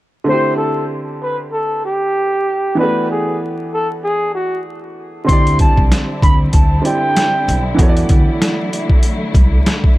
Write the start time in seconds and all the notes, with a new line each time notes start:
0.24 D3 A3
0.28 C4 E4 C5
0.33 G4
0.56 A4
1.22 B4
1.52 A4
1.85 G4
2.75 E3 B3
2.79 D4 F#4 B4
2.83 A3
3.10 G#4
3.74 A4
4.04 G#4
4.35 F#4
5.24 D3 G3 C4 E4 C6
5.29 D2 E4 G4, kick, closed hi-hat
5.33 D5
5.47 closed hi-hat
5.59 A5, kick, closed hi-hat
5.77 C2, kick
5.92 snare, closed hi-hat
6.22 D2 B5, kick, closed hi-hat
6.53 D2 A5, kick, closed hi-hat
6.81 D3 C4 E4 G4 G5, closed hi-hat
6.86 D5
7.16 snare, closed hi-hat
7.48 B1, closed hi-hat
7.74 E3 B3
7.79 E2 F#3 A3 F#4 A4, kick, closed hi-hat
7.83 C#5
7.89 D5
7.97 closed hi-hat
8.09 D2, kick, closed hi-hat
8.42 snare, closed hi-hat
8.73 closed hi-hat
8.90 kick
9.03 closed hi-hat
9.35 C2, kick, closed hi-hat
9.66 snare, closed hi-hat
9.84 kick